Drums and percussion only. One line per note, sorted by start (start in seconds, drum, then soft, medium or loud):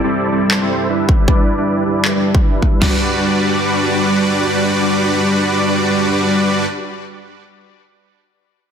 0.51 clap medium
1.09 kick medium
1.28 kick loud
2.05 clap medium
2.35 kick medium
2.62 kick medium
2.82 snare medium
2.82 floor tom medium
2.82 crash medium